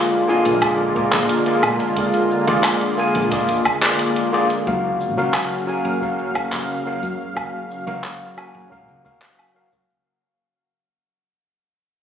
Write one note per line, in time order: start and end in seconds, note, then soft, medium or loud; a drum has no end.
0.00 4.63 D3 medium
0.00 4.63 G#3 medium
0.00 0.24 A#3 medium
0.00 4.63 A#3 medium
0.00 0.24 F4 medium
0.00 0.29 F4 medium
0.00 4.62 F4 loud
0.00 0.25 G#4 medium
0.00 0.25 D5 loud
0.28 0.58 A#3 medium
0.28 0.58 F4 medium
0.28 3.96 F4 medium
0.28 0.58 G#4 medium
0.28 0.59 G#5 medium
0.28 shaker medium
0.45 0.91 A#1 medium
0.45 closed hi-hat soft
0.45 shaker soft
0.61 0.92 A#3 medium
0.61 0.92 F4 medium
0.61 0.92 G#4 medium
0.61 0.92 D5 loud
0.61 kick loud
0.61 closed hi-hat medium
0.61 low woodblock medium
0.61 shaker soft
0.79 shaker soft
0.95 1.10 A#1 medium
0.95 1.42 A#3 medium
0.95 1.43 F4 medium
0.95 1.43 G#4 medium
0.95 1.43 D5 medium
0.95 kick loud
0.95 shaker medium
1.13 1.27 A#1 medium
1.13 clap medium
1.13 shaker soft
1.29 closed hi-hat medium
1.29 shaker soft
1.46 1.60 A#3 medium
1.46 1.60 F4 medium
1.46 1.61 G#4 medium
1.46 1.61 D5 medium
1.46 closed hi-hat soft
1.46 shaker soft
1.63 1.77 A#2 medium
1.63 low woodblock medium
1.63 shaker medium
1.80 closed hi-hat soft
1.80 shaker soft
1.97 2.44 A#3 medium
1.97 2.44 F4 medium
1.97 2.44 G#4 medium
1.97 2.44 D5 medium
1.97 kick loud
1.97 closed hi-hat medium
1.97 shaker soft
2.14 closed hi-hat soft
2.30 shaker medium
2.47 2.61 F1 medium
2.47 2.94 A#3 medium
2.47 2.94 F4 medium
2.47 2.94 G#4 medium
2.47 2.95 D5 loud
2.47 closed hi-hat soft
2.47 shaker soft
2.64 clap medium
2.64 closed hi-hat medium
2.64 low woodblock medium
2.64 shaker soft
2.81 closed hi-hat soft
2.81 shaker soft
2.98 3.28 A#3 medium
2.98 3.28 F4 medium
2.98 3.28 G#4 medium
2.98 3.29 G#5 loud
2.98 shaker medium
3.15 3.49 A#1 medium
3.15 closed hi-hat soft
3.15 shaker soft
3.31 3.61 A#3 medium
3.31 3.62 F4 medium
3.31 3.62 G#4 medium
3.31 3.62 D5 loud
3.31 kick loud
3.31 closed hi-hat medium
3.31 shaker soft
3.49 3.63 G#1 loud
3.49 closed hi-hat soft
3.49 shaker soft
3.65 kick loud
3.65 low woodblock medium
3.65 shaker medium
3.82 4.29 A#3 medium
3.82 4.29 F4 medium
3.82 4.29 G#4 medium
3.82 4.30 D5 loud
3.82 clap medium
3.82 closed hi-hat soft
3.82 shaker soft
3.99 closed hi-hat medium
3.99 shaker soft
4.16 closed hi-hat soft
4.16 shaker soft
4.33 4.47 A#3 medium
4.33 4.47 F4 medium
4.33 4.47 G#4 medium
4.33 4.48 D5 loud
4.33 shaker medium
4.50 closed hi-hat soft
4.50 shaker soft
4.66 5.18 F#1 medium
4.66 10.02 C#3 medium
4.66 5.13 F#3 medium
4.66 10.02 F#3 medium
4.66 10.02 A#3 medium
4.66 5.13 F#4 medium
4.66 5.14 A#4 medium
4.66 10.02 F5 medium
4.66 5.14 F5 medium
4.66 kick loud
4.66 shaker soft
5.01 shaker medium
5.17 5.31 C#2 medium
5.17 5.64 F#3 medium
5.17 5.64 F#4 medium
5.17 5.64 A#4 medium
5.17 5.64 F5 medium
5.17 shaker soft
5.34 clap medium
5.34 low woodblock medium
5.34 shaker soft
5.67 5.97 F#3 medium
5.67 5.97 F#4 medium
5.67 5.98 A#4 medium
5.67 5.98 G#5 medium
5.67 shaker medium
5.85 6.30 F#1 medium
5.85 shaker soft
6.01 6.31 F#3 medium
6.01 6.31 F#4 medium
6.01 6.32 A#4 medium
6.01 6.32 F5 medium
6.01 kick loud
6.01 shaker soft
6.19 shaker soft
6.34 6.49 F#1 medium
6.34 6.82 F#3 medium
6.34 6.82 F#4 medium
6.34 6.82 A#4 medium
6.34 6.82 F5 medium
6.34 kick loud
6.34 low woodblock medium
6.34 shaker medium
6.52 6.66 F#1 medium
6.52 clap medium
6.52 shaker soft
6.69 shaker soft
6.85 6.99 F#3 medium
6.85 7.00 F#4 medium
6.85 7.00 A#4 medium
6.85 7.00 F5 medium
6.85 shaker soft
7.03 7.17 F#2 medium
7.03 kick medium
7.03 shaker medium
7.20 shaker soft
7.35 7.82 F#3 medium
7.35 7.83 F#4 medium
7.35 7.83 A#4 medium
7.35 7.83 F5 medium
7.35 kick loud
7.35 low woodblock medium
7.35 shaker soft
7.71 shaker medium
7.86 8.01 C#2 medium
7.86 8.33 F#3 medium
7.86 8.33 F#4 medium
7.86 8.34 A#4 medium
7.86 8.34 F5 medium
7.86 shaker soft
8.04 clap medium
8.04 shaker soft
8.37 8.67 F#3 medium
8.37 8.67 F#4 medium
8.37 8.68 A#4 medium
8.37 8.68 G#5 medium
8.37 low woodblock medium
8.37 shaker medium
8.55 8.89 F#1 medium
8.55 shaker soft
8.70 9.00 F#3 medium
8.70 9.01 F#4 medium
8.70 9.01 A#4 medium
8.70 9.01 F5 medium
8.70 kick loud
8.70 shaker soft
8.89 9.02 C#2 medium
8.89 shaker soft
9.04 9.51 F#3 medium
9.04 9.51 F#4 medium
9.04 9.52 A#4 medium
9.04 9.52 F5 medium
9.04 kick loud
9.04 shaker medium
9.22 clap medium
9.22 shaker soft
9.39 low woodblock medium
9.39 shaker soft
9.54 9.69 F#3 medium
9.54 9.69 F#4 medium
9.54 9.69 A#4 medium
9.54 9.70 F5 medium
9.54 shaker soft
9.72 kick medium
9.72 shaker medium
9.90 shaker soft